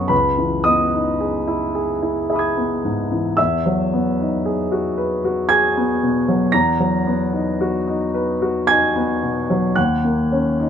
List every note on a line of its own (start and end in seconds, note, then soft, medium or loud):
0.00 0.14 F#2 soft
0.00 0.11 F#3 soft
0.00 0.14 B3 soft
0.00 0.14 F#4 soft
0.00 0.13 A#4 soft
0.00 0.09 B4 soft
0.00 0.13 C#5 soft
0.00 0.14 D#5 medium
0.00 0.11 C#6 medium
0.00 0.14 D#6 medium
0.08 3.33 C#2 soft
0.08 0.61 B4 soft
0.08 0.64 B5 medium
0.38 0.82 E3 soft
0.64 1.09 B3 soft
0.64 1.71 D#5 soft
0.64 1.74 D#6 medium
0.93 1.37 D#4 soft
1.20 1.64 G#4 soft
1.47 1.91 E4 soft
1.75 2.19 G#4 soft
2.02 2.46 E4 soft
2.30 2.73 G#4 soft
2.30 3.34 E5 soft
2.30 3.36 B5 soft
2.36 3.38 D#6 soft
2.36 3.39 G#6 soft
2.57 3.00 B3 soft
2.85 3.28 G#2 soft
3.11 3.39 E3 soft
3.37 6.49 E2 soft
3.37 5.46 E5 medium
3.37 5.49 E6 medium
3.66 4.09 F#3 soft
3.93 4.36 B3 soft
4.20 4.61 D#4 soft
4.46 4.87 G#4 soft
4.72 5.13 F#4 soft
4.98 5.39 B4 soft
5.25 5.66 F#4 soft
5.49 5.92 G#4 soft
5.49 6.48 G#5 medium
5.49 6.52 G#6 medium
5.77 6.18 B3 soft
6.03 6.43 B2 soft
6.28 6.53 F#3 soft
6.52 9.73 E2 soft
6.52 8.65 A#5 medium
6.52 8.68 A#6 medium
6.80 7.22 F#3 soft
7.07 7.50 B3 soft
7.33 7.76 D#4 soft
7.61 8.04 F#4 soft
7.88 8.31 D#4 soft
8.14 8.58 B4 soft
8.42 8.85 F#4 soft
8.67 9.12 D#4 soft
8.67 9.72 G#5 medium
8.67 9.76 G#6 medium
8.96 9.39 B3 soft
9.23 9.66 B2 soft
9.50 9.77 F#3 soft
9.75 10.70 D#2 soft
9.75 10.70 F#5 soft
9.75 10.70 F#6 medium
10.04 10.48 A#3 soft
10.32 10.70 C#4 soft
10.60 10.70 D#4 soft